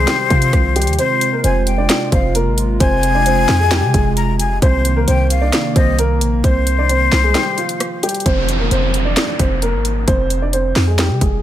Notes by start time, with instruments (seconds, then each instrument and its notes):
Already playing: analog synth pad C3 D#3 C4, flute C5
0.07 grand piano G3 G4, snare, clap, closed hi-hat
0.30 808-style bass C3, grand piano F3 F4, kick, closed hi-hat
0.42 closed hi-hat
0.53 808-style bass C2, kick, cross-stick, closed hi-hat
0.76 grand piano G3 G4, closed hi-hat
0.82 closed hi-hat
0.87 808-style bass D#2, closed hi-hat
0.93 closed hi-hat
0.99 analog synth pad C3 G#3 F4, grand piano C4 C5, flute C5, closed hi-hat
1.21 closed hi-hat
1.33 grand piano A#3 A#4
1.44 808-style bass F1, grand piano C4 C5, flute G#5, closed hi-hat
1.66 flute G5, closed hi-hat
1.78 grand piano D4 D5
1.89 snare, clap, closed hi-hat
2.12 808-style bass F1, grand piano C4 C5, flute F5, kick, closed hi-hat
2.35 grand piano A#3 A#4, closed hi-hat
2.46 808-style bass G#1
2.58 closed hi-hat
2.80 808-style bass F1, grand piano C4 C5, flute G#5, kick, closed hi-hat
3.03 closed hi-hat
3.15 grand piano D4 D5
3.26 grand piano C4 C5, closed hi-hat
3.49 808-style bass F2, snare, clap, open hi-hat
3.60 grand piano G#3 G#4
3.71 grand piano G3 G4, snare, clap, closed hi-hat
3.83 808-style bass C3
3.94 808-style bass F1, grand piano G#3 G#4, kick, closed hi-hat
4.17 flute A#5, closed hi-hat
4.39 flute G#5, closed hi-hat
4.62 808-style bass C2, analog synth pad D#3 A#3, grand piano C4 C5, flute C5, kick, closed hi-hat
4.85 closed hi-hat
4.96 grand piano A#3 A#4
5.08 808-style bass C2, grand piano C4 C5, flute G5, closed hi-hat
5.30 flute F5, closed hi-hat
5.42 grand piano D4 D5
5.53 snare, clap, closed hi-hat
5.76 808-style bass C2, grand piano C4 C5, flute D#5, kick, closed hi-hat
5.99 grand piano A#3 A#4, closed hi-hat
6.21 808-style bass A#1, closed hi-hat
6.44 808-style bass C2, grand piano C4 C5, flute C5, kick, closed hi-hat
6.67 closed hi-hat
6.79 grand piano D4 D5
6.89 grand piano C4 C5, closed hi-hat
7.12 808-style bass C2, snare, clap, open hi-hat
7.24 grand piano G#3 G#4
7.35 grand piano G3 G4, snare, clap, closed hi-hat
7.58 grand piano F3 F4, closed hi-hat
7.69 closed hi-hat
7.80 cross-stick, closed hi-hat
8.03 grand piano G3 G4, closed hi-hat
8.09 closed hi-hat
8.14 closed hi-hat
8.20 closed hi-hat
8.26 808-style bass F1, grand piano C4 C5, kick, closed hi-hat, downlifter
8.49 closed hi-hat
8.60 grand piano A#3 A#4
8.71 808-style bass F1, grand piano C4 C5, closed hi-hat
8.94 closed hi-hat
9.05 grand piano D4 D5
9.17 snare, clap, closed hi-hat
9.39 808-style bass F1, grand piano C4 C5, kick, closed hi-hat
9.62 grand piano A#3 A#4, closed hi-hat
9.74 808-style bass G#1
9.85 closed hi-hat
10.07 808-style bass F1, grand piano C4 C5, kick, closed hi-hat
10.30 closed hi-hat
10.42 grand piano D4 D5
10.53 grand piano C4 C5, closed hi-hat
10.76 808-style bass F2, snare, clap, open hi-hat
10.87 grand piano G#3 G#4
10.98 grand piano G3 G4, snare, clap, closed hi-hat
11.10 808-style bass C3
11.21 808-style bass F1, grand piano G#3 G#4, kick, closed hi-hat